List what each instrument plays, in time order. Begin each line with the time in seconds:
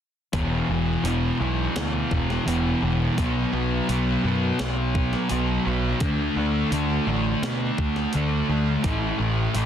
0.33 picked electric bass E1, distorted electric guitar E2 B2 E3, kick, open hi-hat
0.68 picked electric bass E1, distorted electric guitar B2 E3
1.03 picked electric bass E1, distorted electric guitar E2 B2 E3, open hi-hat
1.39 picked electric bass B1, distorted electric guitar B2 E3
1.76 picked electric bass D2, snare, open hi-hat
2.11 picked electric bass E1, kick
2.30 snare
2.45 picked electric bass E1, distorted electric guitar E2 B2 E3, open hi-hat
2.82 picked electric bass E1, distorted electric guitar B2 E3
3.17 picked electric bass B1, distorted electric guitar B2 F#3 B3, kick, open hi-hat
3.52 picked electric bass B1, distorted electric guitar F#3 B3
3.88 picked electric bass B1, distorted electric guitar B2 F#3 B3, open hi-hat
4.24 picked electric bass F#2, distorted electric guitar F#3 B3
4.59 picked electric bass B1, snare, open hi-hat
4.95 kick
5.13 snare
5.29 picked electric bass B1, distorted electric guitar B2 F#3 B3, open hi-hat
5.65 picked electric bass B1, distorted electric guitar F#3 B3
6.00 picked electric bass D2, distorted electric guitar D3 A3 D4, kick, open hi-hat
6.36 picked electric bass D2, distorted electric guitar A3 D4
6.72 picked electric bass D2, distorted electric guitar D3 A3 D4, open hi-hat
7.07 picked electric bass A1, distorted electric guitar A3 D4
7.42 picked electric bass B2, snare, open hi-hat
7.78 picked electric bass D2, kick
7.96 snare
8.13 picked electric bass D2, distorted electric guitar D3 A3 D4, open hi-hat
8.49 picked electric bass D2, distorted electric guitar A3 D4
8.83 picked electric bass A1, distorted electric guitar A2 E3 A3, kick, open hi-hat
9.18 picked electric bass A1, distorted electric guitar E3 A3
9.54 picked electric bass A1, distorted electric guitar A2 E3 A3, open hi-hat